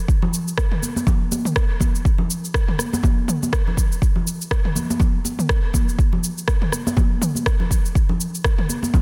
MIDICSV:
0, 0, Header, 1, 2, 480
1, 0, Start_track
1, 0, Tempo, 491803
1, 83, Time_signature, 4, 2, 24, 8
1, 8803, End_track
2, 0, Start_track
2, 0, Title_t, "Drums"
2, 82, Note_on_c, 9, 36, 117
2, 90, Note_on_c, 9, 69, 40
2, 179, Note_off_c, 9, 36, 0
2, 188, Note_off_c, 9, 69, 0
2, 218, Note_on_c, 9, 64, 99
2, 316, Note_off_c, 9, 64, 0
2, 329, Note_on_c, 9, 69, 90
2, 427, Note_off_c, 9, 69, 0
2, 467, Note_on_c, 9, 69, 51
2, 562, Note_on_c, 9, 36, 113
2, 562, Note_on_c, 9, 37, 107
2, 565, Note_off_c, 9, 69, 0
2, 569, Note_on_c, 9, 69, 38
2, 659, Note_off_c, 9, 37, 0
2, 660, Note_off_c, 9, 36, 0
2, 667, Note_off_c, 9, 69, 0
2, 699, Note_on_c, 9, 47, 87
2, 796, Note_off_c, 9, 47, 0
2, 803, Note_on_c, 9, 63, 63
2, 810, Note_on_c, 9, 69, 94
2, 901, Note_off_c, 9, 63, 0
2, 908, Note_off_c, 9, 69, 0
2, 939, Note_on_c, 9, 63, 96
2, 946, Note_on_c, 9, 69, 52
2, 1037, Note_off_c, 9, 63, 0
2, 1041, Note_on_c, 9, 64, 114
2, 1042, Note_on_c, 9, 36, 121
2, 1043, Note_off_c, 9, 69, 0
2, 1046, Note_on_c, 9, 63, 112
2, 1048, Note_on_c, 9, 69, 39
2, 1139, Note_off_c, 9, 64, 0
2, 1140, Note_off_c, 9, 36, 0
2, 1143, Note_off_c, 9, 63, 0
2, 1146, Note_off_c, 9, 69, 0
2, 1286, Note_on_c, 9, 63, 93
2, 1288, Note_on_c, 9, 69, 93
2, 1383, Note_off_c, 9, 63, 0
2, 1386, Note_off_c, 9, 69, 0
2, 1418, Note_on_c, 9, 47, 76
2, 1426, Note_on_c, 9, 69, 53
2, 1516, Note_off_c, 9, 47, 0
2, 1521, Note_on_c, 9, 37, 104
2, 1522, Note_on_c, 9, 36, 119
2, 1523, Note_off_c, 9, 69, 0
2, 1529, Note_on_c, 9, 69, 38
2, 1619, Note_off_c, 9, 37, 0
2, 1620, Note_off_c, 9, 36, 0
2, 1627, Note_off_c, 9, 69, 0
2, 1755, Note_on_c, 9, 64, 76
2, 1762, Note_on_c, 9, 36, 82
2, 1762, Note_on_c, 9, 63, 94
2, 1769, Note_on_c, 9, 69, 91
2, 1853, Note_off_c, 9, 64, 0
2, 1859, Note_off_c, 9, 36, 0
2, 1859, Note_off_c, 9, 63, 0
2, 1866, Note_off_c, 9, 69, 0
2, 1906, Note_on_c, 9, 69, 52
2, 2002, Note_on_c, 9, 36, 113
2, 2003, Note_off_c, 9, 69, 0
2, 2009, Note_on_c, 9, 69, 38
2, 2099, Note_off_c, 9, 36, 0
2, 2107, Note_off_c, 9, 69, 0
2, 2131, Note_on_c, 9, 64, 90
2, 2229, Note_off_c, 9, 64, 0
2, 2249, Note_on_c, 9, 69, 93
2, 2347, Note_off_c, 9, 69, 0
2, 2387, Note_on_c, 9, 69, 51
2, 2482, Note_on_c, 9, 36, 117
2, 2483, Note_on_c, 9, 37, 100
2, 2485, Note_off_c, 9, 69, 0
2, 2490, Note_on_c, 9, 69, 40
2, 2579, Note_off_c, 9, 36, 0
2, 2580, Note_off_c, 9, 37, 0
2, 2588, Note_off_c, 9, 69, 0
2, 2619, Note_on_c, 9, 47, 82
2, 2717, Note_off_c, 9, 47, 0
2, 2718, Note_on_c, 9, 63, 64
2, 2723, Note_on_c, 9, 37, 59
2, 2731, Note_on_c, 9, 69, 96
2, 2815, Note_off_c, 9, 63, 0
2, 2821, Note_off_c, 9, 37, 0
2, 2828, Note_off_c, 9, 69, 0
2, 2863, Note_on_c, 9, 63, 106
2, 2868, Note_on_c, 9, 69, 52
2, 2957, Note_on_c, 9, 64, 97
2, 2960, Note_off_c, 9, 63, 0
2, 2962, Note_on_c, 9, 36, 118
2, 2966, Note_off_c, 9, 69, 0
2, 2967, Note_on_c, 9, 63, 118
2, 2971, Note_on_c, 9, 69, 40
2, 3055, Note_off_c, 9, 64, 0
2, 3060, Note_off_c, 9, 36, 0
2, 3065, Note_off_c, 9, 63, 0
2, 3068, Note_off_c, 9, 69, 0
2, 3203, Note_on_c, 9, 47, 88
2, 3210, Note_on_c, 9, 69, 94
2, 3300, Note_off_c, 9, 47, 0
2, 3308, Note_off_c, 9, 69, 0
2, 3345, Note_on_c, 9, 63, 71
2, 3348, Note_on_c, 9, 69, 55
2, 3442, Note_on_c, 9, 36, 115
2, 3443, Note_off_c, 9, 63, 0
2, 3444, Note_on_c, 9, 37, 105
2, 3446, Note_off_c, 9, 69, 0
2, 3451, Note_on_c, 9, 69, 41
2, 3539, Note_off_c, 9, 36, 0
2, 3541, Note_off_c, 9, 37, 0
2, 3549, Note_off_c, 9, 69, 0
2, 3586, Note_on_c, 9, 64, 82
2, 3682, Note_on_c, 9, 36, 78
2, 3684, Note_off_c, 9, 64, 0
2, 3690, Note_on_c, 9, 69, 94
2, 3780, Note_off_c, 9, 36, 0
2, 3788, Note_off_c, 9, 69, 0
2, 3828, Note_on_c, 9, 69, 54
2, 3922, Note_on_c, 9, 36, 119
2, 3926, Note_off_c, 9, 69, 0
2, 3931, Note_on_c, 9, 69, 39
2, 4020, Note_off_c, 9, 36, 0
2, 4028, Note_off_c, 9, 69, 0
2, 4056, Note_on_c, 9, 64, 84
2, 4154, Note_off_c, 9, 64, 0
2, 4171, Note_on_c, 9, 69, 94
2, 4269, Note_off_c, 9, 69, 0
2, 4308, Note_on_c, 9, 69, 52
2, 4402, Note_on_c, 9, 36, 116
2, 4403, Note_on_c, 9, 37, 101
2, 4406, Note_off_c, 9, 69, 0
2, 4411, Note_on_c, 9, 69, 40
2, 4499, Note_off_c, 9, 36, 0
2, 4501, Note_off_c, 9, 37, 0
2, 4508, Note_off_c, 9, 69, 0
2, 4539, Note_on_c, 9, 47, 81
2, 4637, Note_off_c, 9, 47, 0
2, 4639, Note_on_c, 9, 64, 76
2, 4645, Note_on_c, 9, 63, 63
2, 4649, Note_on_c, 9, 69, 91
2, 4737, Note_off_c, 9, 64, 0
2, 4742, Note_off_c, 9, 63, 0
2, 4747, Note_off_c, 9, 69, 0
2, 4785, Note_on_c, 9, 63, 90
2, 4787, Note_on_c, 9, 69, 52
2, 4876, Note_off_c, 9, 63, 0
2, 4876, Note_on_c, 9, 63, 119
2, 4882, Note_on_c, 9, 36, 115
2, 4885, Note_off_c, 9, 69, 0
2, 4885, Note_on_c, 9, 64, 93
2, 4889, Note_on_c, 9, 69, 39
2, 4974, Note_off_c, 9, 63, 0
2, 4979, Note_off_c, 9, 36, 0
2, 4983, Note_off_c, 9, 64, 0
2, 4987, Note_off_c, 9, 69, 0
2, 5121, Note_on_c, 9, 63, 92
2, 5128, Note_on_c, 9, 69, 93
2, 5219, Note_off_c, 9, 63, 0
2, 5226, Note_off_c, 9, 69, 0
2, 5259, Note_on_c, 9, 47, 76
2, 5266, Note_on_c, 9, 69, 55
2, 5356, Note_off_c, 9, 47, 0
2, 5361, Note_on_c, 9, 37, 99
2, 5362, Note_on_c, 9, 36, 123
2, 5364, Note_off_c, 9, 69, 0
2, 5369, Note_on_c, 9, 69, 39
2, 5459, Note_off_c, 9, 36, 0
2, 5459, Note_off_c, 9, 37, 0
2, 5466, Note_off_c, 9, 69, 0
2, 5596, Note_on_c, 9, 64, 74
2, 5600, Note_on_c, 9, 63, 114
2, 5602, Note_on_c, 9, 36, 82
2, 5609, Note_on_c, 9, 69, 91
2, 5693, Note_off_c, 9, 64, 0
2, 5697, Note_off_c, 9, 63, 0
2, 5699, Note_off_c, 9, 36, 0
2, 5706, Note_off_c, 9, 69, 0
2, 5746, Note_on_c, 9, 69, 52
2, 5842, Note_on_c, 9, 36, 114
2, 5844, Note_off_c, 9, 69, 0
2, 5850, Note_on_c, 9, 69, 37
2, 5940, Note_off_c, 9, 36, 0
2, 5948, Note_off_c, 9, 69, 0
2, 5979, Note_on_c, 9, 64, 81
2, 6077, Note_off_c, 9, 64, 0
2, 6088, Note_on_c, 9, 69, 88
2, 6186, Note_off_c, 9, 69, 0
2, 6227, Note_on_c, 9, 69, 52
2, 6321, Note_on_c, 9, 37, 97
2, 6322, Note_on_c, 9, 36, 110
2, 6325, Note_off_c, 9, 69, 0
2, 6329, Note_on_c, 9, 69, 39
2, 6419, Note_off_c, 9, 37, 0
2, 6420, Note_off_c, 9, 36, 0
2, 6426, Note_off_c, 9, 69, 0
2, 6459, Note_on_c, 9, 47, 91
2, 6556, Note_off_c, 9, 47, 0
2, 6558, Note_on_c, 9, 63, 60
2, 6563, Note_on_c, 9, 37, 56
2, 6570, Note_on_c, 9, 69, 92
2, 6656, Note_off_c, 9, 63, 0
2, 6660, Note_off_c, 9, 37, 0
2, 6668, Note_off_c, 9, 69, 0
2, 6702, Note_on_c, 9, 63, 100
2, 6708, Note_on_c, 9, 69, 49
2, 6799, Note_off_c, 9, 63, 0
2, 6799, Note_on_c, 9, 63, 113
2, 6802, Note_on_c, 9, 36, 115
2, 6805, Note_off_c, 9, 69, 0
2, 6809, Note_on_c, 9, 64, 97
2, 6811, Note_on_c, 9, 69, 37
2, 6897, Note_off_c, 9, 63, 0
2, 6900, Note_off_c, 9, 36, 0
2, 6907, Note_off_c, 9, 64, 0
2, 6908, Note_off_c, 9, 69, 0
2, 7043, Note_on_c, 9, 47, 87
2, 7050, Note_on_c, 9, 69, 88
2, 7140, Note_off_c, 9, 47, 0
2, 7148, Note_off_c, 9, 69, 0
2, 7174, Note_on_c, 9, 63, 62
2, 7187, Note_on_c, 9, 69, 51
2, 7271, Note_off_c, 9, 63, 0
2, 7282, Note_on_c, 9, 36, 115
2, 7282, Note_on_c, 9, 37, 98
2, 7285, Note_off_c, 9, 69, 0
2, 7290, Note_on_c, 9, 69, 38
2, 7380, Note_off_c, 9, 36, 0
2, 7380, Note_off_c, 9, 37, 0
2, 7387, Note_off_c, 9, 69, 0
2, 7417, Note_on_c, 9, 64, 86
2, 7514, Note_off_c, 9, 64, 0
2, 7522, Note_on_c, 9, 36, 74
2, 7530, Note_on_c, 9, 69, 90
2, 7620, Note_off_c, 9, 36, 0
2, 7627, Note_off_c, 9, 69, 0
2, 7667, Note_on_c, 9, 69, 51
2, 7762, Note_on_c, 9, 36, 111
2, 7765, Note_off_c, 9, 69, 0
2, 7770, Note_on_c, 9, 69, 38
2, 7860, Note_off_c, 9, 36, 0
2, 7867, Note_off_c, 9, 69, 0
2, 7898, Note_on_c, 9, 64, 87
2, 7995, Note_off_c, 9, 64, 0
2, 8009, Note_on_c, 9, 69, 84
2, 8107, Note_off_c, 9, 69, 0
2, 8148, Note_on_c, 9, 69, 50
2, 8242, Note_on_c, 9, 36, 111
2, 8242, Note_on_c, 9, 37, 96
2, 8245, Note_off_c, 9, 69, 0
2, 8250, Note_on_c, 9, 69, 36
2, 8340, Note_off_c, 9, 36, 0
2, 8340, Note_off_c, 9, 37, 0
2, 8347, Note_off_c, 9, 69, 0
2, 8379, Note_on_c, 9, 47, 90
2, 8476, Note_off_c, 9, 47, 0
2, 8483, Note_on_c, 9, 63, 58
2, 8489, Note_on_c, 9, 69, 85
2, 8581, Note_off_c, 9, 63, 0
2, 8587, Note_off_c, 9, 69, 0
2, 8615, Note_on_c, 9, 63, 88
2, 8627, Note_on_c, 9, 69, 47
2, 8713, Note_off_c, 9, 63, 0
2, 8722, Note_on_c, 9, 36, 114
2, 8725, Note_off_c, 9, 69, 0
2, 8725, Note_on_c, 9, 64, 101
2, 8728, Note_on_c, 9, 63, 99
2, 8728, Note_on_c, 9, 69, 37
2, 8803, Note_off_c, 9, 36, 0
2, 8803, Note_off_c, 9, 63, 0
2, 8803, Note_off_c, 9, 64, 0
2, 8803, Note_off_c, 9, 69, 0
2, 8803, End_track
0, 0, End_of_file